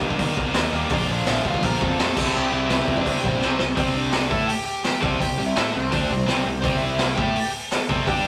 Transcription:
0.00 0.13 G2 medium
0.00 0.71 D#3 loud
0.00 0.72 G3 loud
0.00 0.72 A#3 loud
0.00 0.70 D#4 medium
0.00 kick medium
0.10 kick medium
0.19 0.31 D#3 medium
0.19 kick loud
0.19 open hi-hat medium
0.37 0.49 C2 loud
0.37 kick medium
0.54 0.67 D#2 loud
0.54 snare loud
0.54 open hi-hat medium
0.72 0.84 D#2 loud
0.72 0.90 D#3 medium
0.72 0.91 G3 medium
0.72 0.90 A#3 medium
0.72 0.90 D#4 loud
0.89 1.02 A#1 loud
0.89 2.14 A#2 loud
0.89 2.14 D3 medium
0.89 2.16 F3 loud
0.89 2.16 A#3 loud
0.89 1.09 D4 medium
0.89 kick loud
0.89 open hi-hat medium
0.93 2.17 F4 loud
0.93 1.11 D5 medium
1.08 1.20 A#1 loud
1.08 1.27 D4 medium
1.13 1.30 D5 loud
1.26 1.38 A#1 loud
1.26 1.45 E4 medium
1.26 snare loud
1.26 open hi-hat medium
1.31 1.48 E5 loud
1.45 1.57 G1 medium
1.45 1.63 F4 medium
1.45 kick loud
1.49 1.64 F5 loud
1.54 kick medium
1.62 1.75 A#1 loud
1.62 1.81 A#4 medium
1.62 1.83 A#5 loud
1.62 kick loud
1.62 open hi-hat medium
1.81 1.93 F2 medium
1.81 2.33 A4 medium
1.81 2.38 A5 loud
1.81 kick loud
1.99 2.11 F2 loud
1.99 snare loud
1.99 open hi-hat medium
2.14 2.28 C2 loud
2.14 3.38 C3 loud
2.14 3.39 G3 loud
2.14 3.40 C4 loud
2.14 kick loud
2.14 crash loud
2.18 3.42 E4 loud
2.35 2.47 C2 medium
2.35 2.52 G4 medium
2.35 2.53 G5 loud
2.52 2.64 C2 loud
2.52 2.70 E4 medium
2.52 2.71 E5 loud
2.69 2.81 C2 loud
2.69 2.97 E4 medium
2.69 2.99 E5 medium
2.69 snare loud
2.69 open hi-hat medium
2.88 2.99 F2 medium
2.88 kick medium
2.97 3.23 D4 medium
2.97 3.26 D5 loud
2.97 kick medium
3.06 3.18 C3 loud
3.06 kick loud
3.06 open hi-hat medium
3.24 3.36 A#1 medium
3.24 3.59 C4 medium
3.24 3.59 C5 medium
3.24 kick loud
3.40 3.53 C2 medium
3.40 3.58 C3 medium
3.40 3.58 G3 medium
3.40 3.59 C4 medium
3.40 3.60 E4 medium
3.40 snare medium
3.59 3.71 C2 medium
3.59 snare loud
3.75 4.28 C2 loud
3.75 4.30 C3 loud
3.75 4.29 G3 loud
3.75 4.30 C4 loud
3.75 3.95 C5 medium
3.75 kick loud
3.75 open hi-hat medium
3.80 3.95 C4 medium
3.95 4.12 D4 medium
3.95 4.11 D5 loud
4.12 4.30 D4 medium
4.12 4.32 D5 medium
4.12 snare loud
4.12 open hi-hat medium
4.30 4.48 A2 loud
4.30 4.48 A3 medium
4.30 4.48 E4 medium
4.30 4.49 A4 loud
4.30 4.47 E5 loud
4.30 kick loud
4.48 4.66 G4 medium
4.48 4.64 G5 medium
4.48 open hi-hat medium
4.65 4.84 G4 medium
4.65 4.83 G5 loud
4.84 5.03 G4 medium
4.84 5.03 G5 loud
4.84 snare loud
4.84 open hi-hat medium
5.01 5.20 C2 loud
5.01 5.19 C3 loud
5.01 5.19 G3 medium
5.01 5.21 C4 loud
5.01 5.20 A4 medium
5.01 5.21 A5 loud
5.01 kick loud
5.20 5.38 C2 medium
5.20 5.35 C3 medium
5.20 5.35 G3 medium
5.20 5.47 G4 medium
5.20 5.46 G5 loud
5.20 kick medium
5.20 open hi-hat medium
5.38 5.56 C2 loud
5.38 5.53 C3 medium
5.38 5.53 G3 medium
5.46 5.73 E4 medium
5.46 5.75 E5 medium
5.56 5.74 A2 loud
5.56 5.73 A3 medium
5.56 5.74 E4 loud
5.56 5.74 A4 loud
5.56 snare loud
5.56 open hi-hat medium
5.74 5.92 C2 medium
5.74 5.89 C3 medium
5.74 5.89 G3 medium
5.74 6.43 C4 medium
5.74 6.42 C5 loud
5.91 6.09 D2 loud
5.91 6.09 D3 loud
5.91 6.10 A3 loud
5.91 6.11 D4 loud
5.91 kick loud
5.91 open hi-hat medium
6.10 6.26 C2 medium
6.10 6.25 C3 medium
6.10 6.25 G3 medium
6.26 6.44 C2 loud
6.26 6.43 C3 medium
6.26 6.44 G3 loud
6.26 6.46 C4 loud
6.26 snare loud
6.26 open hi-hat medium
6.44 6.62 C2 medium
6.44 6.60 C3 medium
6.44 6.60 G3 medium
6.61 7.14 C2 loud
6.61 7.17 C3 loud
6.61 7.17 G3 loud
6.61 6.81 C4 medium
6.61 7.17 C4 loud
6.61 6.81 C5 medium
6.61 kick loud
6.61 open hi-hat medium
6.77 7.15 E4 medium
6.77 7.17 E5 loud
6.99 snare loud
6.99 open hi-hat medium
7.15 7.35 A2 loud
7.15 7.36 A3 loud
7.15 7.36 E4 medium
7.15 7.51 G4 medium
7.15 7.50 G5 loud
7.15 kick loud
7.20 7.36 A4 loud
7.36 open hi-hat medium
7.71 8.06 A4 medium
7.71 8.06 A5 medium
7.71 snare loud
7.71 open hi-hat medium
7.89 8.06 C2 loud
7.89 8.07 C3 loud
7.89 8.07 G3 medium
7.89 8.07 C4 loud
7.89 kick loud
8.07 8.28 G2 loud
8.07 8.28 G3 loud
8.07 8.28 D4 loud
8.07 8.25 G4 medium
8.07 8.28 G4 medium
8.07 8.26 G5 medium
8.07 kick loud
8.07 open hi-hat medium

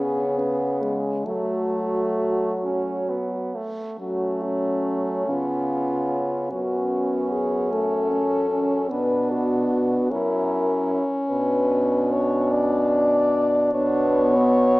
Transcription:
0.00 1.27 C#3 soft
0.00 1.09 B3 soft
0.00 0.40 C#4 soft
0.00 0.93 G#4 medium
0.38 0.84 B3 soft
0.82 1.27 G#3 soft
1.25 3.65 F#3 soft
1.25 3.32 A3 soft
1.25 2.52 A3 soft
1.25 3.51 F#4 medium
2.64 3.11 C#4 soft
3.09 3.56 B3 soft
3.55 3.99 A3 soft
3.99 5.24 F#3 soft
3.99 5.30 A3 soft
3.99 6.48 C#4 soft
3.99 4.45 F#4 soft
4.43 5.31 C#4 soft
5.28 6.53 C#3 soft
5.28 6.51 B3 soft
5.28 6.51 F4 medium
6.52 8.91 F#2 soft
6.52 7.74 B3 soft
6.52 8.93 C#4 soft
6.52 7.33 F#4 medium
7.31 7.73 G#4 soft
7.71 8.13 A3 soft
7.71 8.90 A4 medium
8.11 8.50 C#4 soft
8.51 8.92 C#4 soft
8.90 10.09 B2 soft
8.90 10.13 B3 soft
8.90 10.11 D4 soft
8.90 9.32 B4 medium
9.31 10.12 F#4 medium
10.11 11.03 F#2 soft
10.11 13.46 C#4 medium
10.11 11.03 E4 soft
10.11 11.04 A#4 medium
11.30 13.70 B2 medium
11.30 13.71 D4 soft
11.30 12.13 B4 medium
12.12 12.54 C#5 medium
12.52 13.74 D5 medium
13.73 14.80 B2 medium
13.73 14.80 B3 medium
13.73 14.38 D4 medium
13.73 14.80 C#5 medium
14.36 14.80 B3 medium

